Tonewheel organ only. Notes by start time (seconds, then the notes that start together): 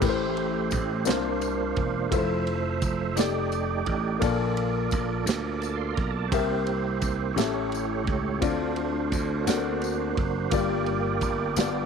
0.01 A3 E4 G4 C5
1.06 A#3 D4 F4 C5
2.11 F3 A3 C5 E5
3.15 A3 D#4 G4 D5
4.21 A#3 F4 A4 C#5
4.28 D5
5.60 A5
5.75 C6
5.94 A#5
6.11 A5
6.28 A#3 E4 G4 C5
7.33 A3 E4 G4 C#5
8.41 A3 D4 F4 C5
9.44 A#3 D4 F#4 C5
10.50 A#3 F4 G4 D5
11.57 B3 F4 G4 D5